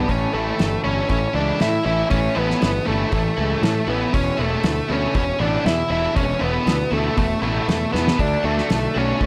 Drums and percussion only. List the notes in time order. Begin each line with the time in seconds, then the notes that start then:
0.09 kick, open hi-hat
0.59 snare, open hi-hat
1.09 kick, open hi-hat
1.60 snare, open hi-hat
2.11 kick, open hi-hat
2.51 snare
2.62 snare, open hi-hat
3.12 kick, open hi-hat
3.63 snare, open hi-hat
4.14 kick, open hi-hat
4.63 snare, open hi-hat
5.15 kick, open hi-hat
5.66 snare, open hi-hat
6.16 kick, open hi-hat
6.67 snare, open hi-hat
7.17 kick, open hi-hat
7.69 snare, open hi-hat
7.95 snare
8.08 snare
8.19 kick, open hi-hat
8.58 snare
8.70 snare, open hi-hat
9.21 kick, open hi-hat